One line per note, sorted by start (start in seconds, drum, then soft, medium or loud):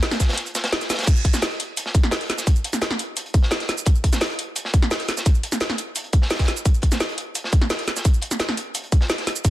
0.03 snare loud
0.03 closed hi-hat loud
0.03 closed hi-hat medium
0.11 snare loud
0.11 snare medium
0.11 closed hi-hat medium
0.11 shaker soft
0.20 kick medium
0.20 snare medium
0.20 closed hi-hat medium
0.20 shaker medium
0.29 snare medium
0.29 closed hi-hat medium
0.33 snare medium
0.33 closed hi-hat medium
0.37 closed hi-hat medium
0.37 closed hi-hat loud
0.46 closed hi-hat soft
0.46 shaker soft
0.55 snare medium
0.55 closed hi-hat medium
0.55 shaker medium
0.64 snare loud
0.64 closed hi-hat medium
0.64 closed hi-hat soft
0.73 snare loud
0.73 closed hi-hat loud
0.73 closed hi-hat medium
0.81 snare medium
0.81 closed hi-hat soft
0.81 shaker soft
0.89 snare soft
0.89 snare loud
0.89 closed hi-hat medium
0.89 shaker medium
0.94 snare loud
0.94 closed hi-hat medium
0.99 snare loud
0.99 closed hi-hat soft
0.99 closed hi-hat medium
1.03 snare medium
1.03 closed hi-hat medium
1.07 kick loud
1.07 closed hi-hat loud
1.07 closed hi-hat medium
1.07 crash loud
1.07 shaker medium
1.16 shaker soft
1.25 kick medium
1.25 closed hi-hat medium
1.33 snare medium
1.33 snare soft
1.33 shaker medium
1.42 snare loud
1.42 closed hi-hat medium
1.42 closed hi-hat loud
1.42 shaker soft
1.50 closed hi-hat soft
1.59 closed hi-hat medium
1.77 closed hi-hat medium
1.77 closed hi-hat loud
1.77 shaker medium
1.86 snare medium
1.94 kick loud
1.94 closed hi-hat medium
1.94 shaker soft
2.03 snare soft
2.11 snare loud
2.11 closed hi-hat loud
2.11 open hi-hat medium
2.11 shaker soft
2.21 closed hi-hat soft
2.30 snare soft
2.30 closed hi-hat medium
2.30 shaker soft
2.38 snare medium
2.38 shaker medium
2.47 kick loud
2.47 closed hi-hat medium
2.47 shaker soft
2.56 shaker soft
2.64 closed hi-hat medium
2.73 snare soft
2.73 shaker medium
2.82 snare loud
2.82 closed hi-hat loud
2.82 closed hi-hat medium
2.82 shaker medium
2.91 snare medium
2.99 closed hi-hat medium
2.99 shaker soft
3.17 closed hi-hat loud
3.17 closed hi-hat medium
3.17 shaker soft
3.26 closed hi-hat soft
3.34 kick loud
3.34 closed hi-hat medium
3.34 shaker soft
3.42 snare medium
3.51 snare loud
3.51 closed hi-hat medium
3.51 shaker soft
3.60 snare medium
3.60 closed hi-hat soft
3.69 snare soft
3.69 closed hi-hat medium
3.69 shaker soft
3.78 shaker medium
3.85 kick loud
3.85 closed hi-hat medium
3.85 shaker soft
3.95 shaker soft
4.04 kick medium
4.04 closed hi-hat medium
4.13 snare medium
4.13 snare soft
4.13 shaker medium
4.21 snare loud
4.21 closed hi-hat medium
4.21 closed hi-hat loud
4.21 shaker soft
4.30 closed hi-hat soft
4.39 closed hi-hat medium
4.56 closed hi-hat medium
4.56 shaker soft
4.65 snare medium
4.74 kick loud
4.74 closed hi-hat medium
4.74 shaker soft
4.82 snare soft
4.91 snare loud
4.91 closed hi-hat medium
4.91 open hi-hat medium
4.91 shaker soft
5.00 closed hi-hat soft
5.08 snare soft
5.08 closed hi-hat medium
5.08 shaker soft
5.17 snare medium
5.17 shaker medium
5.26 kick loud
5.26 closed hi-hat medium
5.26 shaker soft
5.35 shaker soft
5.43 closed hi-hat medium
5.52 snare soft
5.52 shaker medium
5.60 snare loud
5.60 closed hi-hat medium
5.60 shaker soft
5.70 snare medium
5.78 closed hi-hat medium
5.78 shaker soft
5.96 closed hi-hat medium
5.96 shaker soft
6.04 closed hi-hat soft
6.13 kick loud
6.13 closed hi-hat medium
6.13 shaker soft
6.22 snare medium
6.31 snare loud
6.31 snare medium
6.31 closed hi-hat medium
6.31 shaker soft
6.35 snare medium
6.35 closed hi-hat medium
6.39 kick medium
6.39 snare medium
6.39 closed hi-hat soft
6.39 closed hi-hat medium
6.44 snare medium
6.44 closed hi-hat medium
6.48 snare soft
6.48 closed hi-hat medium
6.48 shaker soft
6.57 shaker medium
6.65 kick loud
6.65 closed hi-hat medium
6.65 shaker soft
6.74 shaker soft
6.82 kick medium
6.82 closed hi-hat medium
6.92 snare medium
6.92 snare soft
6.92 shaker medium
7.00 snare loud
7.00 closed hi-hat medium
7.00 shaker soft
7.09 closed hi-hat soft
7.18 closed hi-hat medium
7.35 closed hi-hat medium
7.35 shaker medium
7.44 snare medium
7.52 kick loud
7.52 closed hi-hat medium
7.52 shaker soft
7.61 snare soft
7.70 snare loud
7.70 closed hi-hat medium
7.70 open hi-hat medium
7.70 shaker medium
7.79 closed hi-hat soft
7.88 snare soft
7.88 closed hi-hat medium
7.88 shaker soft
7.96 snare medium
7.96 shaker medium
8.05 kick loud
8.05 closed hi-hat loud
8.05 closed hi-hat medium
8.05 shaker medium
8.14 shaker soft
8.22 closed hi-hat medium
8.31 snare soft
8.31 shaker medium
8.40 snare loud
8.40 closed hi-hat medium
8.40 shaker medium
8.49 snare medium
8.57 closed hi-hat medium
8.57 shaker soft
8.75 closed hi-hat medium
8.75 closed hi-hat loud
8.75 shaker medium
8.84 closed hi-hat soft
8.92 kick loud
8.92 closed hi-hat medium
8.92 shaker soft
9.01 snare medium
9.10 snare loud
9.10 closed hi-hat medium
9.10 shaker medium
9.18 snare medium
9.18 closed hi-hat soft
9.27 snare soft
9.27 closed hi-hat medium
9.27 shaker soft
9.36 shaker medium
9.45 kick loud
9.45 closed hi-hat loud
9.45 closed hi-hat medium
9.45 shaker medium